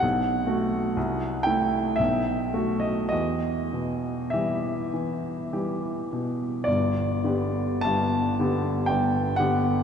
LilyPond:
<<
  \new Staff \with { instrumentName = "Grand piano" } { \time 3/4 \key e \minor \tempo 4 = 55 fis''4. g''8 e''8. dis''16 | dis''4 e''4 r4 | \key g \major d''4 a''4 g''8 fis''8 | }
  \new Staff \with { instrumentName = "Grand piano" } { \clef bass \time 3/4 \key e \minor b,,8 <a fis'>8 c,8 <a e'>8 b,,8 <a fis'>8 | e,8 b,8 <e g g'>8 e8 <e g g'>8 b,8 | \key g \major <g,, g,>8 <d b g'>8 <g,, g,>8 <d b g'>8 <g,, g,>8 <d b g'>8 | }
>>